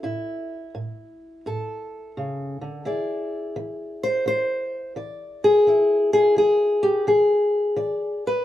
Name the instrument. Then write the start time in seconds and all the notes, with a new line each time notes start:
steel-string acoustic guitar
Already playing: A4
0.03 A2 E4
0.75 A2
1.46 A2 A4
2.17 C#3
2.61 D3
2.85 E3 E4 G#4 D5
3.56 E3
4.03 C5
4.26 E3 C5
4.96 E3 D5
5.44 G#4
5.67 E3 E4
6.13 G#4
6.36 E3 G#4
6.83 G4
7.07 E3 G#4
7.76 E3 D5
8.27 B4